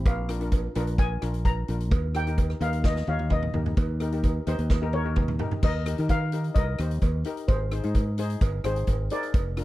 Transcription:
0.05 A#1 F5, kick, closed hi-hat, cowbell
0.29 D4 F4 A#4, cross-stick, closed hi-hat
0.41 D4 F4 A#4, closed hi-hat
0.52 kick, closed hi-hat, cowbell
0.75 A#1 D4 F4 A#4, closed hi-hat, cowbell
0.87 closed hi-hat
0.98 G#5, kick, closed hi-hat, cowbell
1.22 A#1 D4 F4 A#4, cross-stick, closed hi-hat
1.34 closed hi-hat
1.45 A#5, kick, closed hi-hat, cowbell
1.68 A#1 D4 F4 A#4, closed hi-hat
1.80 closed hi-hat
1.91 D#2, kick, closed hi-hat, cowbell
2.15 D#4 G4 A#4 G5, cross-stick, closed hi-hat
2.27 D#4 G4 A#4, closed hi-hat
2.38 kick, closed hi-hat, cowbell
2.50 cross-stick
2.60 D#2 D#4 G4 A#4 F5, closed hi-hat, cowbell
2.73 closed hi-hat
2.84 D#5, kick, snare, cowbell
2.96 snare
3.07 D#2 D#4 G4 C#5 F5, high tom
3.19 high tom
3.30 D#5, kick, mid tom, cowbell
3.43 mid tom
3.54 D#2 D#4 G4 A#4, floor tom
3.66 floor tom
3.77 D#2, kick, closed hi-hat, cowbell
4.00 D#4 G4 A#4, cross-stick, closed hi-hat
4.12 D#4 G4 A#4, closed hi-hat
4.24 kick, closed hi-hat, cowbell
4.47 D#2 D#4 G4 C5, closed hi-hat, cowbell
4.59 D#2, closed hi-hat
4.70 kick, snare, cowbell
4.82 D#4 G4 A#4
4.93 A#4 C#5, high tom
5.04 D#4 G4 A#4
5.16 kick, mid tom, cowbell
5.28 mid tom
5.39 D#4 G4 A#4, floor tom
5.51 floor tom
5.63 D#2 A#4 D#5, kick, crash, cowbell
5.86 D#4 G4 A#4, cross-stick, closed hi-hat
5.98 D#3 D#4 G4 A#4, closed hi-hat
6.09 A#4 F5, kick, closed hi-hat, cowbell
6.32 D#4 G4 A#4, closed hi-hat
6.44 closed hi-hat
6.55 C2 A#4 D#5, kick, closed hi-hat, cowbell
6.79 D#2 D#4 G4 C5, cross-stick, closed hi-hat
6.91 closed hi-hat
7.01 D#2, kick, closed hi-hat, cowbell
7.25 D#4 G4 A#4, closed hi-hat
7.37 closed hi-hat
7.48 G#1 G#4 C5, kick, closed hi-hat, cowbell
7.72 D#4 G#4 C5, cross-stick, closed hi-hat
7.83 G#2 D#4 G#4 C5, closed hi-hat
7.95 kick, closed hi-hat, cowbell
8.18 D#4 G#4 C5, closed hi-hat
8.30 closed hi-hat
8.41 G1, kick, closed hi-hat, cowbell
8.64 G#1 D#4 G#4 C5, cross-stick, closed hi-hat
8.76 closed hi-hat
8.87 G#1, kick, closed hi-hat, cowbell
9.10 D#4 G#4 A#4 C5 D5, closed hi-hat
9.23 closed hi-hat
9.34 F1, kick, closed hi-hat, cowbell
9.57 D4 F4 A#4, cross-stick, closed hi-hat

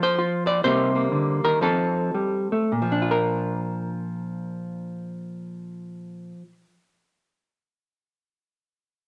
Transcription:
Already playing: F3 F4
0.03 C5
0.18 F4
0.47 D5
0.64 C3 G3 A#3 D#4 C5
0.95 A#3
1.12 D3
1.44 D#3 A#4
1.61 F3 C4 D#4 A4
2.15 G3
2.52 A3
2.72 A#2
2.82 F3
2.92 D4
3.02 F4
3.11 A#4

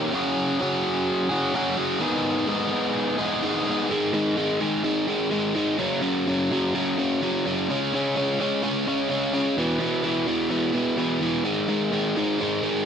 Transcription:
Already playing: D#3 A#3 C#4 G4
0.13 C#3 F#3 C#4 F#4 G#4
0.60 F#3 C#4 F#4 G#4
1.29 C#4 F#4 G#4
1.54 C#3 F#3 C#4 F#4 G#4
1.77 C#4 F#4 G#4
2.01 G#2 D#3 G#3 B3 D#4 G#4
2.48 G#3 B3 D#4 G#4
3.18 G#3 B3 D#4 G#4
3.42 G#2 D#3 G#3 B3 D#4 G#4
3.66 G#3 B3 D#4 G#4
3.90 G#2 D#3 G#3
4.13 G#2 D#3 G#3
4.37 G#2 D#3 G#3
4.60 G#2 D#3 G#3
4.84 G#2 D#3 G#3
5.07 G#2 D#3 G#3
5.31 G#2 D#3 G#3
5.54 G#2 D#3 G#3
5.78 F#2 C#3 F#3
6.01 F#2 C#3 F#3
6.27 F#2 C#3 F#3
6.51 F#2 C#3 F#3
6.75 F#2 C#3 F#3
6.99 F#2 C#3 F#3
7.22 F#2 C#3 F#3
7.46 F#2 C#3 F#3
7.69 C#3 G#3 C#4
7.93 C#3 G#3 C#4
8.16 C#3 G#3 C#4
8.40 C#3 G#3 C#4
8.62 C#3 G#3 C#4
8.87 C#3 G#3 C#4
9.09 C#3 G#3 C#4
9.33 C#3 G#3 C#4
9.57 E2 B2 E3
9.79 E2 B2 E3
10.03 E2 B2 E3
10.26 E2 B2 E3
10.50 E2 B2 E3
10.73 E2 B2 E3
10.97 E2 B2 E3
11.21 E2 B2 E3
11.44 G#2 D#3 G#3
11.68 G#2 D#3 G#3
11.92 G#2 D#3 G#3
12.17 G#2 D#3 G#3
12.39 G#2 D#3 G#3
12.62 G#2 D#3 G#3

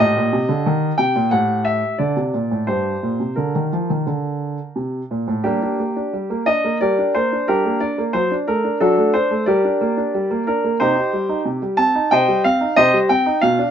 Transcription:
0.00 A2 G4 D#5
0.17 A#2
0.33 C3
0.49 D3
0.66 D#3
0.98 C3 G5
1.16 A#2
1.31 A2 G4 F#5
1.65 E5
1.98 D3 D5
2.17 C3
2.34 A#2
2.51 A2
2.67 G2 G4 C5
3.03 A#2
3.20 C3
3.36 D3 A#4
3.55 D#3
3.73 F3
3.90 D#3
4.06 D3
4.76 C3
5.11 A#2
5.28 A2
5.44 G3 A#3 D4 G4
5.63 D4
5.80 A#3
5.96 D4
6.13 G3
6.30 A#3
6.46 D4 D#5
6.64 A#3
6.81 G3 G4 A#4 D5
6.98 D4
7.15 A#3 C5
7.32 D4
7.48 G3 D4 G4 A#4
7.65 A#3
7.80 D4 D5
7.98 A#3
8.13 F#3 C5
8.31 D4
8.48 A3 A#4
8.64 D4
8.80 F#3 D4 F#4 A4
8.97 A3
9.14 D4 C5
9.31 A3
9.46 G3 G4 A#4 D5
9.65 D4
9.81 A#3
9.97 D4
10.14 G3
10.31 A#3
10.47 D4 A#4
10.64 A#3
10.80 C3 D#4 G4 C5
10.97 D#4
11.13 G3
11.29 D#4
11.45 C3
11.62 G3
11.77 C4 A5
11.95 D#4
12.11 C3 C5 D#5 G5
12.28 G3
12.44 C4 F5
12.61 D#4
12.76 C3 G4 C5 D#5
12.93 G3
13.09 C4 G5
13.26 D#4
13.41 B2 F5
13.59 D4

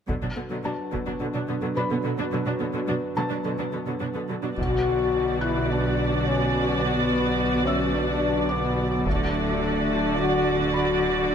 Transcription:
0.08 B2 D3 F#3 D4 F#4 B4, taiko
0.22 B2 F#3 D4
0.36 B2 D3 B3
0.51 B2 D3 F#3
0.64 B2 F#3 D4 A5
0.92 B2 D3 F#3, taiko
1.07 B2 F#3 D4
1.20 B2 D3 F#3
1.34 B2 F#3 D4
1.49 B2 D3 B3
1.62 B2 D3 F#3
1.76 B2 F#3 D4 B4 B5
1.91 B2 D3 B3
2.04 B2 D3 F#3
2.18 B2 F#3 D4
2.32 B2 D3 F#3
2.46 B2 F#3 D4
2.60 B2 D3 B3
2.74 B2 D3 F#3
2.88 B2 F#3 D4
3.16 B2 D3 F#3 A5
3.31 B2 F#3 D4
3.45 B2 D3 F#3
3.59 B2 F#3 D4
3.73 B2 D3 B3
3.86 B2 D3 F#3
4.01 B2 F#3 D4
4.15 B2 D3 B3
4.29 B2 D3 F#3
4.43 B2 F#3 D4
4.57 B1 B2 D3 F#3 F#4 B4 D5, taiko
5.41 E4 F#6
5.70 D4
6.27 C#4
6.83 B3
7.66 C#4 E5 E6
7.95 D4
8.49 B3 D6
9.05 D1 D3 F#3 A3 D4 F#4 A4 D5, taiko
10.18 F#4
10.74 B5
11.31 D4

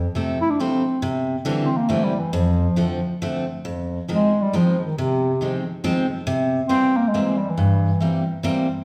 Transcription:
0.15 C3 F3 A3 C4
0.41 E4
0.51 D4
0.60 C3 F3 A3 C4
1.02 C3
1.45 D3 E3 G3 C4
1.65 C4
1.77 A#3
1.89 D3 E3 G3 A3 C4
2.04 G3
2.19 E3
2.33 F2 F3
2.76 D3 F3 A3 C4
3.22 D3 F3 A3 C4
3.65 F2
4.08 D#3 F3 G#3 C4
4.13 G#3
4.42 G3
4.53 D#3 F3 G#3 C4
4.85 D#3
4.98 C3
5.41 D#3 F3 G#3 C4
5.84 D#3 F3 G#3 C4
6.27 C3
6.69 E3 G3 A#3 C4
6.97 A#3
7.08 G#3
7.14 E3 G3 A#3 C4
7.37 G3
7.50 E3
7.58 G2
8.00 E3 G3 A#3 C4
8.43 E3 G3 A#3 C4

